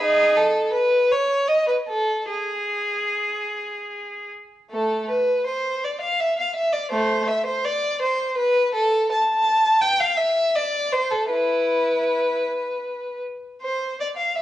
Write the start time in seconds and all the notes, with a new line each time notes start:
0.01 D#4 G#4
0.36 A4
0.73 B4
1.12 C#5
1.48 D#5
1.67 B4
1.88 A4
2.30 G#4
4.71 A3 A4
5.10 B4
5.46 C5
5.84 D5
6.01 F5
6.20 E5
6.39 F5
6.55 E5
6.73 D5
6.91 A3 C5
7.28 E5
7.46 C5
7.65 D5
8.02 C5
8.38 B4
8.74 A4
9.12 A5
9.81 G5
10.00 F5
10.17 E5
10.56 D5
10.92 C5
11.11 A4
11.31 E4 B4
13.62 C5
14.00 D5
14.17 F5
14.35 E5